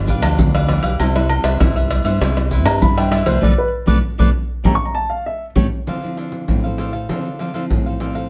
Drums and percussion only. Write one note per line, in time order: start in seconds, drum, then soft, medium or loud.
0.08 pandeiro medium
0.08 maracas medium
0.08 surdo medium
0.22 pandeiro medium
0.22 tamborim medium
0.22 low agogo medium
0.22 maracas medium
0.39 pandeiro medium
0.39 maracas medium
0.39 surdo loud
0.55 pandeiro soft
0.55 tamborim medium
0.55 high agogo medium
0.55 maracas soft
0.68 pandeiro medium
0.68 tamborim medium
0.68 high agogo medium
0.83 pandeiro medium
0.83 high agogo medium
0.83 maracas medium
1.00 pandeiro medium
1.00 low agogo medium
1.00 maracas medium
1.00 surdo medium
1.16 pandeiro soft
1.16 tamborim medium
1.16 maracas soft
1.29 pandeiro medium
1.29 low agogo medium
1.44 pandeiro medium
1.44 tamborim medium
1.44 maracas medium
1.60 pandeiro medium
1.60 tamborim medium
1.60 high agogo medium
1.60 maracas medium
1.60 surdo loud
1.76 pandeiro soft
1.76 high agogo medium
1.76 maracas soft
1.91 pandeiro medium
1.91 tamborim medium
1.91 high agogo medium
1.91 maracas medium
2.05 pandeiro medium
2.05 high agogo medium
2.05 maracas medium
2.21 pandeiro medium
2.21 tamborim medium
2.21 maracas medium
2.21 surdo medium
2.37 pandeiro soft
2.37 tamborim medium
2.37 maracas soft
2.51 pandeiro medium
2.51 maracas medium
2.51 surdo medium
2.65 pandeiro medium
2.65 tamborim medium
2.65 low agogo medium
2.65 maracas medium
2.82 pandeiro medium
2.82 maracas medium
2.82 surdo loud
2.97 pandeiro soft
2.97 tamborim medium
2.97 high agogo medium
2.97 maracas soft
3.12 pandeiro medium
3.12 tamborim medium
3.12 high agogo medium
3.12 maracas medium
3.26 pandeiro medium
3.26 high agogo medium
3.26 maracas medium
3.42 surdo medium
3.87 surdo loud
4.19 surdo loud
4.65 surdo loud
5.56 surdo loud
5.87 pandeiro medium
5.87 surdo soft
6.03 pandeiro soft
6.17 pandeiro medium
6.32 pandeiro medium
6.48 pandeiro medium
6.48 surdo medium
6.64 pandeiro soft
6.78 pandeiro medium
6.93 pandeiro soft
7.09 pandeiro medium
7.09 surdo soft
7.25 pandeiro soft
7.39 pandeiro medium
7.54 pandeiro soft
7.70 pandeiro medium
7.70 surdo medium
7.86 pandeiro soft
8.00 pandeiro medium
8.15 pandeiro medium